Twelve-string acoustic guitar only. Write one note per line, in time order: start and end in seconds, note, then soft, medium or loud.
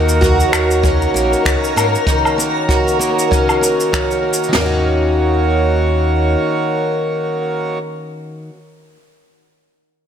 0.00 2.07 D#3 medium
0.00 0.52 A#3 medium
0.21 2.68 F#4 medium
0.53 1.14 A#3 medium
0.83 1.45 C#4 medium
1.14 1.76 A#3 medium
1.45 3.31 C#4 medium
1.76 2.37 A#3 medium
2.07 4.48 D#3 medium
2.38 2.99 A#3 medium
2.69 4.65 F#4 medium
2.99 3.61 A#3 medium
3.31 3.92 C#4 medium
3.61 4.22 A#3 medium
3.92 4.61 C#4 medium
4.23 4.55 A#3 medium
4.49 8.49 D#3 medium
4.56 8.53 A#3 medium
4.61 8.55 C#4 medium
4.66 8.58 F#4 medium